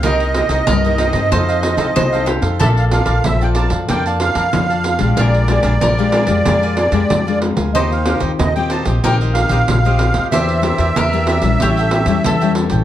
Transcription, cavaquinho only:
X:1
M:4/4
L:1/16
Q:1/4=93
K:Bblyd
V:1 name="Cavaquinho"
[_EBc_e]2 [EBce] [EBce] z [Bce] [EBce] [Bce] [EAcf] [Acf] [EAcf] [EAcf] z [Acf]2 [Acf] | [dfa]2 [Bdfa] [Bdfa] z [dfa] [Bdfa] [dfa] [Bdfa] [dfa] [Bdfa] [Bdfa] z [dfa]2 [dfa] | [DBf_a]2 [DBfa] [DBfa] z [Bfa] [DBfa] [Bfa] [DBfa] [Bfa] [DBfa] [DBfa] z [Bfa]2 [Bfa] | [_EGc_e]2 [EGce] [EGce] z [Gce] [EGce] [Gce] [EGce] [Gce] [EGce] [EGce] z [Gce]2 [Gce] |
[GBde]2 [GBde] [GBde] z [Bde] [GBde] [Bde] [GA^cg] [Acg] [GAcg] [GAcg] z [Acg]2 [Acg] |]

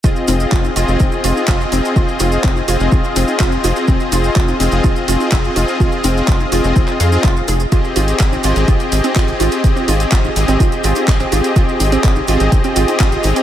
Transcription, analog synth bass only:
X:1
M:4/4
L:1/16
Q:1/4=125
K:Fm
V:1 name="Analog synth bass" clef=bass
F,,, z F,,, z F,,, z F,,, F,,, F,,, z F,,, z F,,, z F,,, z | F,,, z F,,, z F,,, z F,,, F,,, F,,, z F,,, z F,,, z F,,, z | F,,, z F,,, z F,,, z F,,, F,,, z2 F,,, z F,,, z F,,, z | F,,, z F,,, z F,,, z F,,, F,,, F,,, z F,, z F,,, z F,,, z |
A,,, z A,,, z A,,, z A,,, A,,, A,,, z A,,, z A,,, z A,,, z | A,,, z A,,, z A,,, z A,,, A,,, z2 A,,, z A,,, z A,,, z | A,,, z A,,, z A,,, z A,,, A,,, z2 A,,, z A,,, z A,,, z |]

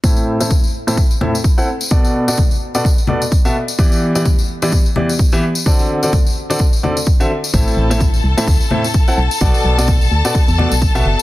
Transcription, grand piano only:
X:1
M:4/4
L:1/16
Q:"Swing 16ths" 1/4=128
K:Ador
V:1 name="Grand piano"
[A,,CEAe]3 [A,,CEAe] z3 [A,,CEAe] z2 [A,,CEAe] z2 [CEAf] z2 | [B,,B,FAd]3 [B,,B,FAd] z3 [B,,B,FAd] z2 [B,,B,FAd] z2 [B,,B,FAe] z2 | [E,B,EGd]3 [E,B,EGd] z3 [E,B,EGd] z2 [E,B,EGd] z2 [E,B,EGe] z2 | [D,CFAd]3 [D,CFAd] z3 [D,CFAd] z2 [D,CFAd] z2 [D,CFAe] z2 |
[A,,CEAe]3 [A,,CEAe] z3 [A,,CEAe] z2 [A,,CEAe] z2 [CEAf] z2 | [B,,B,FAd]3 [B,,B,FAd] z3 [B,,B,FAd] z2 [B,,B,FAd] z2 [B,,B,FAe] z2 |]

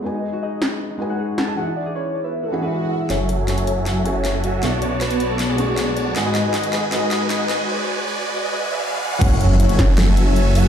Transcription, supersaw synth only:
X:1
M:4/4
L:1/8
Q:1/4=157
K:F#m
V:1 name="Supersaw synth"
z8 | z8 | [F,FAeg]3 [F,FAeg]4 [F,FAeg] | [B,Fcda]3 [B,Fcda]4 [B,Fcda] |
[G,FB^dg]3 [G,FBdg] [G,FBdg]3 [G,FBdg] | [G,FBdg]2 [G,FBdg]2 [G,FBdg] [G,FBdg] [G,FBdg] [G,FBdg] | [F,FAg]3 F,4 [F,FAeg] |]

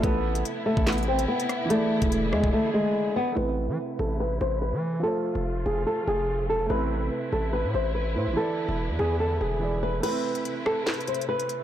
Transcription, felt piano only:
X:1
M:4/4
L:1/8
Q:1/4=144
K:Am
V:1 name="Felt piano"
[A,EAB]8 | [E,E^Gd]8 | [A,CEB]8 | [F,A,Fc]8 |
[A,CEB]6- [A,CEB] [A,EBc] | [E,EBd]6 [E,E^Gd]2 | [A,CEB]8 |]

